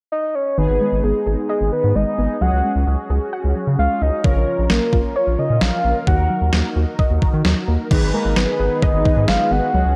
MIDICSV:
0, 0, Header, 1, 7, 480
1, 0, Start_track
1, 0, Tempo, 458015
1, 607, Time_signature, 4, 2, 24, 8
1, 10436, End_track
2, 0, Start_track
2, 0, Title_t, "Soft synth lead"
2, 0, Program_c, 0, 80
2, 127, Note_on_c, 0, 75, 91
2, 366, Note_on_c, 0, 73, 90
2, 382, Note_off_c, 0, 75, 0
2, 606, Note_on_c, 0, 71, 94
2, 621, Note_off_c, 0, 73, 0
2, 1086, Note_on_c, 0, 68, 88
2, 1102, Note_off_c, 0, 71, 0
2, 1562, Note_off_c, 0, 68, 0
2, 1568, Note_on_c, 0, 68, 90
2, 1790, Note_off_c, 0, 68, 0
2, 1807, Note_on_c, 0, 71, 92
2, 2046, Note_on_c, 0, 75, 110
2, 2062, Note_off_c, 0, 71, 0
2, 2527, Note_on_c, 0, 78, 106
2, 2542, Note_off_c, 0, 75, 0
2, 3007, Note_off_c, 0, 78, 0
2, 3968, Note_on_c, 0, 77, 93
2, 4208, Note_on_c, 0, 75, 91
2, 4224, Note_off_c, 0, 77, 0
2, 4447, Note_on_c, 0, 73, 94
2, 4463, Note_off_c, 0, 75, 0
2, 4921, Note_off_c, 0, 73, 0
2, 4927, Note_on_c, 0, 70, 89
2, 5407, Note_on_c, 0, 73, 96
2, 5423, Note_off_c, 0, 70, 0
2, 5647, Note_on_c, 0, 75, 93
2, 5662, Note_off_c, 0, 73, 0
2, 5886, Note_on_c, 0, 77, 108
2, 5902, Note_off_c, 0, 75, 0
2, 6359, Note_off_c, 0, 77, 0
2, 6366, Note_on_c, 0, 78, 104
2, 6813, Note_off_c, 0, 78, 0
2, 8529, Note_on_c, 0, 70, 80
2, 8751, Note_off_c, 0, 70, 0
2, 8769, Note_on_c, 0, 71, 87
2, 9248, Note_on_c, 0, 75, 99
2, 9263, Note_off_c, 0, 71, 0
2, 9727, Note_on_c, 0, 77, 107
2, 9742, Note_off_c, 0, 75, 0
2, 9968, Note_on_c, 0, 78, 112
2, 9984, Note_off_c, 0, 77, 0
2, 10436, Note_off_c, 0, 78, 0
2, 10436, End_track
3, 0, Start_track
3, 0, Title_t, "Analog polysynth"
3, 0, Program_c, 1, 90
3, 606, Note_on_c, 1, 59, 65
3, 607, Note_on_c, 1, 63, 59
3, 607, Note_on_c, 1, 68, 73
3, 2488, Note_off_c, 1, 59, 0
3, 2488, Note_off_c, 1, 63, 0
3, 2488, Note_off_c, 1, 68, 0
3, 2526, Note_on_c, 1, 61, 66
3, 2526, Note_on_c, 1, 66, 63
3, 2526, Note_on_c, 1, 68, 70
3, 4408, Note_off_c, 1, 61, 0
3, 4408, Note_off_c, 1, 66, 0
3, 4408, Note_off_c, 1, 68, 0
3, 4446, Note_on_c, 1, 61, 66
3, 4446, Note_on_c, 1, 65, 59
3, 4446, Note_on_c, 1, 70, 75
3, 6328, Note_off_c, 1, 61, 0
3, 6328, Note_off_c, 1, 65, 0
3, 6328, Note_off_c, 1, 70, 0
3, 6367, Note_on_c, 1, 63, 64
3, 6367, Note_on_c, 1, 66, 61
3, 6367, Note_on_c, 1, 70, 70
3, 8248, Note_off_c, 1, 63, 0
3, 8248, Note_off_c, 1, 66, 0
3, 8248, Note_off_c, 1, 70, 0
3, 8286, Note_on_c, 1, 63, 79
3, 8286, Note_on_c, 1, 68, 75
3, 8286, Note_on_c, 1, 71, 90
3, 10168, Note_off_c, 1, 63, 0
3, 10168, Note_off_c, 1, 68, 0
3, 10168, Note_off_c, 1, 71, 0
3, 10207, Note_on_c, 1, 61, 68
3, 10207, Note_on_c, 1, 66, 60
3, 10207, Note_on_c, 1, 68, 75
3, 10436, Note_off_c, 1, 61, 0
3, 10436, Note_off_c, 1, 66, 0
3, 10436, Note_off_c, 1, 68, 0
3, 10436, End_track
4, 0, Start_track
4, 0, Title_t, "Analog synth pad"
4, 0, Program_c, 2, 89
4, 8285, Note_on_c, 2, 56, 73
4, 8286, Note_on_c, 2, 51, 80
4, 8286, Note_on_c, 2, 59, 86
4, 10187, Note_off_c, 2, 51, 0
4, 10187, Note_off_c, 2, 59, 0
4, 10206, Note_on_c, 2, 54, 77
4, 10206, Note_on_c, 2, 61, 88
4, 10436, Note_off_c, 2, 54, 0
4, 10436, Note_off_c, 2, 56, 0
4, 10436, Note_off_c, 2, 61, 0
4, 10436, End_track
5, 0, Start_track
5, 0, Title_t, "Synth pluck"
5, 0, Program_c, 3, 84
5, 607, Note_on_c, 3, 51, 94
5, 781, Note_off_c, 3, 51, 0
5, 847, Note_on_c, 3, 56, 75
5, 1021, Note_off_c, 3, 56, 0
5, 1087, Note_on_c, 3, 59, 85
5, 1261, Note_off_c, 3, 59, 0
5, 1327, Note_on_c, 3, 68, 80
5, 1501, Note_off_c, 3, 68, 0
5, 1566, Note_on_c, 3, 75, 95
5, 1740, Note_off_c, 3, 75, 0
5, 1806, Note_on_c, 3, 51, 76
5, 1980, Note_off_c, 3, 51, 0
5, 2046, Note_on_c, 3, 56, 83
5, 2220, Note_off_c, 3, 56, 0
5, 2286, Note_on_c, 3, 59, 80
5, 2460, Note_off_c, 3, 59, 0
5, 2526, Note_on_c, 3, 54, 93
5, 2700, Note_off_c, 3, 54, 0
5, 2767, Note_on_c, 3, 56, 76
5, 2940, Note_off_c, 3, 56, 0
5, 3007, Note_on_c, 3, 61, 86
5, 3180, Note_off_c, 3, 61, 0
5, 3247, Note_on_c, 3, 68, 84
5, 3421, Note_off_c, 3, 68, 0
5, 3486, Note_on_c, 3, 78, 93
5, 3660, Note_off_c, 3, 78, 0
5, 3726, Note_on_c, 3, 54, 77
5, 3900, Note_off_c, 3, 54, 0
5, 3966, Note_on_c, 3, 56, 85
5, 4140, Note_off_c, 3, 56, 0
5, 4206, Note_on_c, 3, 61, 79
5, 4380, Note_off_c, 3, 61, 0
5, 4446, Note_on_c, 3, 49, 93
5, 4620, Note_off_c, 3, 49, 0
5, 4686, Note_on_c, 3, 53, 78
5, 4860, Note_off_c, 3, 53, 0
5, 4926, Note_on_c, 3, 58, 87
5, 5100, Note_off_c, 3, 58, 0
5, 5166, Note_on_c, 3, 65, 84
5, 5340, Note_off_c, 3, 65, 0
5, 5406, Note_on_c, 3, 73, 94
5, 5580, Note_off_c, 3, 73, 0
5, 5646, Note_on_c, 3, 49, 76
5, 5820, Note_off_c, 3, 49, 0
5, 5886, Note_on_c, 3, 53, 85
5, 6060, Note_off_c, 3, 53, 0
5, 6126, Note_on_c, 3, 58, 81
5, 6300, Note_off_c, 3, 58, 0
5, 6366, Note_on_c, 3, 51, 93
5, 6540, Note_off_c, 3, 51, 0
5, 6606, Note_on_c, 3, 54, 77
5, 6780, Note_off_c, 3, 54, 0
5, 6846, Note_on_c, 3, 58, 86
5, 7020, Note_off_c, 3, 58, 0
5, 7086, Note_on_c, 3, 66, 80
5, 7260, Note_off_c, 3, 66, 0
5, 7326, Note_on_c, 3, 75, 93
5, 7500, Note_off_c, 3, 75, 0
5, 7566, Note_on_c, 3, 51, 76
5, 7740, Note_off_c, 3, 51, 0
5, 7806, Note_on_c, 3, 54, 85
5, 7980, Note_off_c, 3, 54, 0
5, 8046, Note_on_c, 3, 58, 80
5, 8220, Note_off_c, 3, 58, 0
5, 8286, Note_on_c, 3, 51, 99
5, 8460, Note_off_c, 3, 51, 0
5, 8527, Note_on_c, 3, 56, 77
5, 8700, Note_off_c, 3, 56, 0
5, 8767, Note_on_c, 3, 59, 86
5, 8941, Note_off_c, 3, 59, 0
5, 9007, Note_on_c, 3, 68, 82
5, 9180, Note_off_c, 3, 68, 0
5, 9246, Note_on_c, 3, 75, 99
5, 9420, Note_off_c, 3, 75, 0
5, 9487, Note_on_c, 3, 51, 74
5, 9661, Note_off_c, 3, 51, 0
5, 9727, Note_on_c, 3, 56, 85
5, 9901, Note_off_c, 3, 56, 0
5, 9967, Note_on_c, 3, 59, 84
5, 10141, Note_off_c, 3, 59, 0
5, 10207, Note_on_c, 3, 54, 95
5, 10380, Note_off_c, 3, 54, 0
5, 10436, End_track
6, 0, Start_track
6, 0, Title_t, "Analog synth bass"
6, 0, Program_c, 4, 38
6, 607, Note_on_c, 4, 32, 102
6, 700, Note_off_c, 4, 32, 0
6, 727, Note_on_c, 4, 32, 99
6, 821, Note_off_c, 4, 32, 0
6, 967, Note_on_c, 4, 32, 89
6, 1061, Note_off_c, 4, 32, 0
6, 1086, Note_on_c, 4, 32, 104
6, 1180, Note_off_c, 4, 32, 0
6, 1327, Note_on_c, 4, 32, 95
6, 1420, Note_off_c, 4, 32, 0
6, 1687, Note_on_c, 4, 32, 100
6, 1781, Note_off_c, 4, 32, 0
6, 1926, Note_on_c, 4, 44, 94
6, 2020, Note_off_c, 4, 44, 0
6, 2045, Note_on_c, 4, 32, 103
6, 2140, Note_off_c, 4, 32, 0
6, 2286, Note_on_c, 4, 32, 86
6, 2380, Note_off_c, 4, 32, 0
6, 2526, Note_on_c, 4, 37, 99
6, 2620, Note_off_c, 4, 37, 0
6, 2646, Note_on_c, 4, 37, 93
6, 2740, Note_off_c, 4, 37, 0
6, 2885, Note_on_c, 4, 37, 96
6, 2980, Note_off_c, 4, 37, 0
6, 3005, Note_on_c, 4, 37, 96
6, 3100, Note_off_c, 4, 37, 0
6, 3246, Note_on_c, 4, 37, 98
6, 3340, Note_off_c, 4, 37, 0
6, 3605, Note_on_c, 4, 37, 92
6, 3699, Note_off_c, 4, 37, 0
6, 3846, Note_on_c, 4, 49, 90
6, 3940, Note_off_c, 4, 49, 0
6, 3966, Note_on_c, 4, 37, 99
6, 4060, Note_off_c, 4, 37, 0
6, 4206, Note_on_c, 4, 37, 94
6, 4300, Note_off_c, 4, 37, 0
6, 4446, Note_on_c, 4, 34, 100
6, 4540, Note_off_c, 4, 34, 0
6, 4567, Note_on_c, 4, 34, 99
6, 4660, Note_off_c, 4, 34, 0
6, 4806, Note_on_c, 4, 34, 98
6, 4900, Note_off_c, 4, 34, 0
6, 4926, Note_on_c, 4, 34, 100
6, 5020, Note_off_c, 4, 34, 0
6, 5164, Note_on_c, 4, 34, 90
6, 5259, Note_off_c, 4, 34, 0
6, 5526, Note_on_c, 4, 34, 88
6, 5620, Note_off_c, 4, 34, 0
6, 5766, Note_on_c, 4, 46, 89
6, 5860, Note_off_c, 4, 46, 0
6, 5886, Note_on_c, 4, 34, 104
6, 5980, Note_off_c, 4, 34, 0
6, 6126, Note_on_c, 4, 34, 98
6, 6220, Note_off_c, 4, 34, 0
6, 6366, Note_on_c, 4, 39, 110
6, 6460, Note_off_c, 4, 39, 0
6, 6486, Note_on_c, 4, 39, 92
6, 6580, Note_off_c, 4, 39, 0
6, 6726, Note_on_c, 4, 39, 94
6, 6820, Note_off_c, 4, 39, 0
6, 6846, Note_on_c, 4, 39, 98
6, 6940, Note_off_c, 4, 39, 0
6, 7086, Note_on_c, 4, 39, 100
6, 7180, Note_off_c, 4, 39, 0
6, 7446, Note_on_c, 4, 39, 97
6, 7540, Note_off_c, 4, 39, 0
6, 7687, Note_on_c, 4, 51, 100
6, 7780, Note_off_c, 4, 51, 0
6, 7806, Note_on_c, 4, 39, 96
6, 7900, Note_off_c, 4, 39, 0
6, 8047, Note_on_c, 4, 39, 96
6, 8141, Note_off_c, 4, 39, 0
6, 8287, Note_on_c, 4, 32, 105
6, 8381, Note_off_c, 4, 32, 0
6, 8406, Note_on_c, 4, 32, 98
6, 8500, Note_off_c, 4, 32, 0
6, 8646, Note_on_c, 4, 32, 99
6, 8740, Note_off_c, 4, 32, 0
6, 8767, Note_on_c, 4, 32, 100
6, 8860, Note_off_c, 4, 32, 0
6, 9007, Note_on_c, 4, 32, 94
6, 9101, Note_off_c, 4, 32, 0
6, 9367, Note_on_c, 4, 32, 101
6, 9461, Note_off_c, 4, 32, 0
6, 9607, Note_on_c, 4, 44, 98
6, 9701, Note_off_c, 4, 44, 0
6, 9726, Note_on_c, 4, 32, 101
6, 9820, Note_off_c, 4, 32, 0
6, 9966, Note_on_c, 4, 32, 96
6, 10060, Note_off_c, 4, 32, 0
6, 10207, Note_on_c, 4, 37, 105
6, 10300, Note_off_c, 4, 37, 0
6, 10326, Note_on_c, 4, 37, 100
6, 10420, Note_off_c, 4, 37, 0
6, 10436, End_track
7, 0, Start_track
7, 0, Title_t, "Drums"
7, 4446, Note_on_c, 9, 36, 105
7, 4551, Note_off_c, 9, 36, 0
7, 4923, Note_on_c, 9, 38, 111
7, 5028, Note_off_c, 9, 38, 0
7, 5164, Note_on_c, 9, 36, 90
7, 5269, Note_off_c, 9, 36, 0
7, 5884, Note_on_c, 9, 38, 95
7, 5989, Note_off_c, 9, 38, 0
7, 6366, Note_on_c, 9, 36, 109
7, 6471, Note_off_c, 9, 36, 0
7, 6844, Note_on_c, 9, 38, 108
7, 6948, Note_off_c, 9, 38, 0
7, 7326, Note_on_c, 9, 36, 89
7, 7431, Note_off_c, 9, 36, 0
7, 7567, Note_on_c, 9, 36, 89
7, 7672, Note_off_c, 9, 36, 0
7, 7804, Note_on_c, 9, 38, 97
7, 7909, Note_off_c, 9, 38, 0
7, 8287, Note_on_c, 9, 36, 105
7, 8287, Note_on_c, 9, 49, 86
7, 8391, Note_off_c, 9, 49, 0
7, 8392, Note_off_c, 9, 36, 0
7, 8764, Note_on_c, 9, 38, 111
7, 8868, Note_off_c, 9, 38, 0
7, 9246, Note_on_c, 9, 36, 87
7, 9351, Note_off_c, 9, 36, 0
7, 9487, Note_on_c, 9, 36, 92
7, 9592, Note_off_c, 9, 36, 0
7, 9725, Note_on_c, 9, 38, 102
7, 9829, Note_off_c, 9, 38, 0
7, 10436, End_track
0, 0, End_of_file